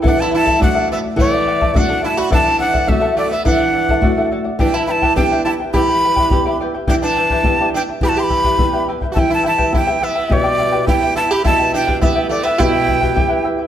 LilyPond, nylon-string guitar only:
\new Staff \with { instrumentName = "Nylon-string guitar" } { \time 4/4 \key d \mixolydian \tempo 4 = 105 e4 <a d' fis'>4 e4 <a d' fis'>4 | e4 <a d' fis'>4 e4 <a d' fis'>4 | e4 <b d' g'>4 e4 <b d' g'>4 | e4 <b d' g'>4 e4 <b d' g'>4 |
e4 <b e' g'>4 b,4 <b e' g'>4 | b,4 <b e' g'>4 b,4 <b e' g'>4 | }